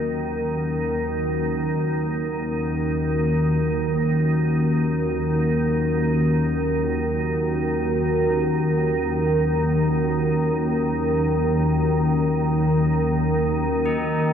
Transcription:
Already playing: D#2 D#3 C#4 D#4 F#4 A#4
13.86 D#4

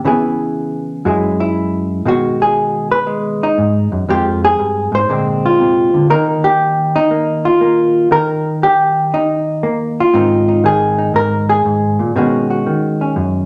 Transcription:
0.05 C#3 E3 B3 E4 G#4
1.05 F#2 F#3 G#3 E4 G#4
1.40 E4
2.05 B2 D#3 G#3 F#4
2.42 G#4
2.92 B4
3.07 G#3
3.43 D#4
3.58 G#2
3.92 F#2
4.09 F2 G#3 C4 F4 G4
4.45 G#4
4.59 G2
4.92 G#2 C5
5.09 A#2 D3 G#3 C4
5.46 F4
5.60 C3
5.94 D3
6.10 D#3 A#3 D#4 A#4
6.44 G4
6.96 D#4
7.11 A#3
7.45 F4
7.61 A#3
8.11 D#3 A#4
8.63 G4
9.14 D#4
9.63 A#3
10.00 F4
10.13 G#2 D#3 C4 D#4
10.48 D#4
10.64 D#3 G#4
10.98 D#4
11.14 G#2 A#4
11.49 G#4
11.65 G#2
11.99 A#2
12.16 B2 D#3 G#3 C#4 F#4
12.50 F#4
12.66 D#3
13.01 C#4
13.16 F#2

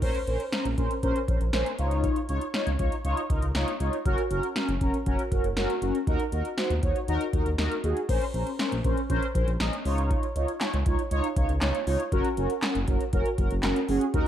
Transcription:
0.02 A#1 C#4 A#4 C5, kick, crash
0.15 closed hi-hat
0.27 A#1 C#4 A#4 C5, closed hi-hat
0.40 closed hi-hat
0.52 C#4 A#4 C5, snare, closed hi-hat
0.65 A#1, closed hi-hat
0.78 A#1 C#4 A#4 C5, kick, closed hi-hat
0.91 closed hi-hat
1.03 A#1 C#4 A#4 C5, kick, closed hi-hat
1.16 closed hi-hat
1.28 A#1 C#4 A#4 C5, kick, closed hi-hat
1.41 A#1, closed hi-hat
1.53 A#1 C#4 A#4 C5, snare, closed hi-hat
1.66 closed hi-hat
1.79 C#2 D#4 F4 C#5, closed hi-hat
1.91 closed hi-hat
2.04 kick, closed hi-hat
2.16 closed hi-hat
2.29 C#2 D#4 F4 C#5, closed hi-hat
2.41 closed hi-hat
2.54 D#4 F4 C#5, snare, closed hi-hat
2.67 C#2, closed hi-hat
2.79 C#2 D#4 F4 C#5, kick, closed hi-hat
2.92 closed hi-hat
3.04 C#2 D#4 F4 C#5, closed hi-hat
3.17 closed hi-hat
3.30 C#2 D#4 F4 A#4, kick, closed hi-hat
3.42 C#2, closed hi-hat
3.55 C#2 D#4 F4 C#5, snare, closed hi-hat
3.68 closed hi-hat
3.80 C#2 D#4 F4 C#5, closed hi-hat
3.93 closed hi-hat
4.06 F#1 C#4 F#4 A#4, kick, closed hi-hat
4.18 closed hi-hat
4.31 F#1 C#4 F#4 A#4, closed hi-hat
4.43 closed hi-hat
4.56 C#4 F#4 A#4, snare, closed hi-hat
4.69 F#1, closed hi-hat
4.81 F#1 C#4 F#4 A#4, kick, closed hi-hat
4.94 closed hi-hat
5.06 F#1 C#4 F#4 A#4, kick, closed hi-hat
5.19 closed hi-hat
5.32 F#1 C#4 F#4 A#4, kick, closed hi-hat
5.44 F#1, closed hi-hat
5.57 F#1 C#4 F#4 A#4, snare, closed hi-hat
5.70 closed hi-hat
5.82 F#1 C#4 F#4 A#4, closed hi-hat
5.95 closed hi-hat
6.07 D#2 D#4 F#4 A#4, kick, closed hi-hat
6.20 closed hi-hat
6.32 D#2 D#4 F#4 A#4, closed hi-hat
6.45 closed hi-hat
6.58 D#4 F#4 C5, snare, closed hi-hat
6.70 D#2, closed hi-hat
6.83 D#2 D#4 F#4 C#5, kick, closed hi-hat
6.96 closed hi-hat
7.08 D#2 D#4 F#4 A#4, closed hi-hat
7.21 closed hi-hat
7.33 D#2 D#4 F#4 A#4, kick, closed hi-hat
7.46 D#2, closed hi-hat
7.58 D#2 D#4 F#4 A#4, snare, closed hi-hat
7.72 closed hi-hat
7.84 D#2 D#4 F#4 G#4, closed hi-hat
7.97 closed hi-hat
8.09 A#1 C#4 A#4 C5, kick, closed hi-hat, crash
8.21 closed hi-hat
8.34 A#1 C#4 A#4 C5, closed hi-hat
8.47 closed hi-hat
8.59 C#4 A#4 C5, snare, closed hi-hat
8.72 A#1, closed hi-hat
8.84 A#1 C#4 A#4 C5, kick, closed hi-hat
8.97 closed hi-hat
9.10 A#1 C#4 A#4 C5, kick, closed hi-hat
9.23 closed hi-hat
9.35 A#1 C#4 A#4 C5, kick, closed hi-hat
9.48 A#1, closed hi-hat
9.60 A#1 C#4 A#4 D#5, snare, closed hi-hat
9.73 closed hi-hat
9.85 C#2 D#4 F4 C#5, open hi-hat
9.98 closed hi-hat
10.11 kick, closed hi-hat
10.23 closed hi-hat
10.36 C#2 D#4 F4 C#5, closed hi-hat
10.48 closed hi-hat
10.61 D#4 F4 C#5, snare, clap, closed hi-hat
10.73 C#2, closed hi-hat
10.86 C#2 D#4 F4 C#5, kick, closed hi-hat
10.99 closed hi-hat
11.11 C#2 D#4 F4 C#5, closed hi-hat
11.24 closed hi-hat
11.37 C#2 D#4 F4 C#5, kick, closed hi-hat
11.49 C#2, closed hi-hat
11.61 C#2 D#4 F4 C#5, snare, clap, closed hi-hat
11.75 closed hi-hat
11.87 C#2 D#4 F4 C#5, open hi-hat
12.00 closed hi-hat
12.12 F#1 C#4 F#4 A#4, kick, closed hi-hat
12.25 closed hi-hat
12.37 F#1 C#4 F#4 A#4, closed hi-hat
12.50 closed hi-hat
12.62 C#4 F#4 A#4, snare, clap, closed hi-hat
12.75 F#1, closed hi-hat
12.88 F#1 C#4 F#4 A#4, kick, closed hi-hat
13.01 closed hi-hat
13.13 F#1 C#4 F#4 A#4, kick, closed hi-hat
13.26 closed hi-hat
13.38 F#1 C#4 F#4 A#4, kick, closed hi-hat
13.51 F#1, closed hi-hat
13.63 F#1 C#4 F#4 A#4, snare, clap, closed hi-hat
13.76 closed hi-hat
13.89 F#1 C#4 F#4 G#4, open hi-hat
14.01 closed hi-hat
14.14 D#2 D#4 F#4 A#4, kick, closed hi-hat

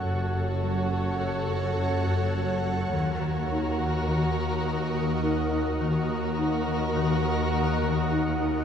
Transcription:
0.04 F#1 F#2 F#4 A4 C#5 F#5
0.33 F#2
0.63 F#3
0.92 F#2
1.20 F#2
1.49 F#2
1.78 F#2
2.07 F#2
2.36 F#3
2.64 F#3
2.93 D#2 D#3 F#4 A#4 D#5 F#5
3.22 D#3
3.51 D#4
3.80 D#3
4.08 D#3
4.66 D#3
4.95 D#3
5.23 D#4
5.52 D#4
5.81 D#2 D#3 F#4 A#4 D#5 F#5
6.38 D#4
6.67 D#3
6.96 D#3
7.25 D#3
7.54 D#3
7.83 D#3
8.12 D#4
8.41 D#4

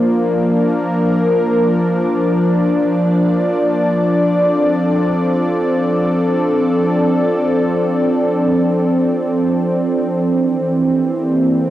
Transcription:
Already playing: F3 A#3 D4 D5
0.15 A#4
4.24 A4
4.38 C4
10.23 E3
10.61 G4
10.98 A#3

